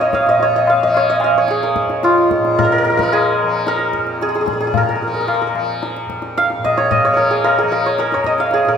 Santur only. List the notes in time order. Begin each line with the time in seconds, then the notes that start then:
Already playing: A#4 C#5 F5
0.01 D#5
0.14 F5
0.29 D#5
0.42 C#5
0.56 D#5
0.70 F5
0.83 D#5
0.97 C#5
1.10 D#5
1.20 G#5
1.24 F5
1.38 C#5
1.51 G#4
1.63 A#4
2.04 F4
2.59 A#4
2.65 A#4
2.72 A#4
2.78 A#4
2.84 A#4
2.90 A#4
2.97 A#4
3.03 A#4
3.13 G#4
3.68 A#4
4.22 G#4
4.29 G#4
4.35 G#4
4.41 G#4
4.46 G#4
4.53 G#4
4.60 G#4
4.67 G#4
4.77 A#4
4.83 A#4
4.89 A#4
4.95 A#4
5.02 A#4
5.07 A#4
5.14 A#4
5.21 A#4
5.27 A#4
5.34 A#4
5.42 A#4
5.47 A#4
6.38 F5
6.64 D#5
6.77 C#5
6.91 D#5
7.05 C#5
7.14 A#4 C#5
7.31 G#4
7.44 A#4
7.58 G#4
7.72 A#4
7.86 C#5
7.99 A#4
8.14 C#5
8.26 D#5
8.40 F5
8.54 G#4
8.68 A#4